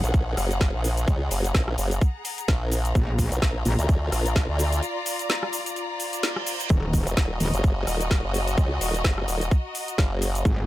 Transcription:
Already playing: G#4 F#5
0.04 A#1, closed hi-hat, shaker
0.14 kick, closed hi-hat, shaker
0.27 A#5
0.37 F#1, cross-stick, open hi-hat, shaker
0.51 closed hi-hat, shaker
0.61 kick, snare, closed hi-hat, shaker
0.74 A#1
0.84 open hi-hat, shaker
0.97 closed hi-hat, shaker
1.08 C#2, kick, closed hi-hat, shaker
1.31 F#1, open hi-hat, shaker
1.44 closed hi-hat, shaker
1.54 A#1, kick, cross-stick, snare, closed hi-hat, shaker
1.68 cross-stick
1.78 F#1, open hi-hat, shaker
1.91 closed hi-hat, shaker
2.01 kick, closed hi-hat, shaker
2.25 open hi-hat, shaker
2.38 closed hi-hat, shaker
2.48 A#1, kick, snare, closed hi-hat, shaker
2.72 open hi-hat, shaker
2.85 closed hi-hat, shaker
2.95 A#1 F4, kick, closed hi-hat, shaker
3.19 kick, open hi-hat, shaker
3.32 B1, closed hi-hat, shaker
3.42 A#1, kick, snare, closed hi-hat, shaker
3.65 A#1, open hi-hat, shaker
3.79 D2 D5, closed hi-hat, shaker
3.89 kick, closed hi-hat, shaker
4.12 A#1, cross-stick, open hi-hat, shaker
4.26 closed hi-hat, shaker
4.36 kick, snare, closed hi-hat, shaker
4.49 D2
4.59 open hi-hat, shaker
4.72 closed hi-hat, shaker
4.83 closed hi-hat, shaker
5.06 open hi-hat, shaker
5.19 closed hi-hat, shaker
5.30 cross-stick, snare, closed hi-hat, shaker
5.43 cross-stick
5.53 open hi-hat, shaker
5.66 closed hi-hat, shaker
5.76 closed hi-hat, reverse cymbal, shaker
6.00 open hi-hat, shaker
6.13 closed hi-hat, shaker
6.23 snare, closed hi-hat, shaker
6.36 cross-stick
6.47 open hi-hat, shaker
6.60 closed hi-hat, shaker
6.70 D#1 F#4, kick, closed hi-hat, shaker
6.80 D#5
6.93 kick, open hi-hat, shaker
7.07 F1, closed hi-hat, shaker
7.17 D#1, kick, snare, closed hi-hat, shaker
7.40 D#1, open hi-hat, shaker
7.54 F#1, closed hi-hat, shaker
7.64 kick, closed hi-hat, shaker
7.87 D#1, cross-stick, open hi-hat, shaker
8.01 closed hi-hat, shaker
8.11 kick, snare, closed hi-hat, shaker
8.24 F#1
8.34 open hi-hat, shaker
8.47 closed hi-hat, shaker
8.57 C#2, kick, closed hi-hat, shaker
8.81 D#1, open hi-hat, shaker
8.94 closed hi-hat, shaker
9.04 F#1, kick, cross-stick, snare, closed hi-hat, shaker
9.18 cross-stick
9.28 D#1, open hi-hat, shaker
9.41 closed hi-hat, shaker
9.51 kick, closed hi-hat, shaker
9.75 open hi-hat, shaker
9.88 closed hi-hat, shaker
9.98 F#1, kick, snare, closed hi-hat, shaker
10.22 open hi-hat, shaker
10.35 closed hi-hat, shaker
10.45 G#1 G#4, kick, closed hi-hat, shaker

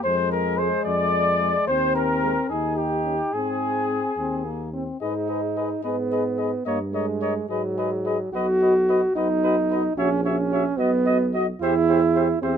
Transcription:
0.03 F2 G#3 C5
0.31 A#4
0.58 G#3 C5
0.84 F2 D5
1.41 G#3
1.67 D#2 C4 C5
1.95 A#4
2.23 G#3
2.49 D#2 D#4 G#4
2.76 G4
3.05 C#4
3.33 G#2 C4 G#4
3.90 C4
4.17 D#2 C4
4.45 A#3
4.74 C4
5.01 G#2 D#4 G#4 B4 D#5
5.28 G#4 B4 D#5
5.56 G#4 B4 D#5
5.83 G#2 B3 G#4 B4 D#5
6.11 G#4 B4 D#5
6.38 G#4 B4 D#5
6.65 G2 A#3 A#4 C#5 D#5
6.93 G#3 A#4 C#5 D#5
7.21 A#4 C#5 D#5
7.49 G#2 F#3 G#4 B4 D#5
7.77 G#4 B4 D#5
8.05 G#4 B4 D#5
8.33 B1 F#4 B4 D#5
8.62 F#4 B4 D#5
8.89 F#4 B4 D#5
9.16 B1 D#4 F#4 B4 D#5
9.43 F#4 B4 D#5
9.70 F#4 B4 D#5
9.97 A#1 C#4 F#4 C#5 E5
10.23 C#4 F#4 C#5 E5
10.51 F#4 C#5 E5
10.77 B1 B3 F#4 D#5
11.06 F#4 D#5
11.34 F#4 D#5
11.61 E2 E4 G4 C5 E5
11.88 G4 C5 E5
12.15 G4 C5 E5
12.42 E2 C4 G4 C5 E5

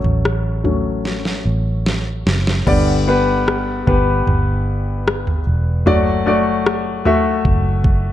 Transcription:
Already playing: F#3 A3 C#4 A4
0.04 A1, floor tom
0.25 cross-stick
0.64 F#3 A3 C#4, floor tom
1.05 snare
1.25 snare
1.45 A1
1.86 snare
2.26 F#1, snare
2.47 snare
2.67 G1 G2 D3 B3 G4 D5, kick, floor tom, crash
3.07 B3 G4 B4
3.48 cross-stick
3.87 G1 B3 G4 B4, kick, floor tom
4.27 G1, floor tom
5.08 cross-stick
5.27 floor tom
5.47 E1
5.86 F#1 F#3 A3 F#4 D5, floor tom
6.26 A3 F#4 D5
6.66 cross-stick
7.05 A3 F#4 E5, floor tom
7.45 F#1, kick, floor tom
7.84 kick

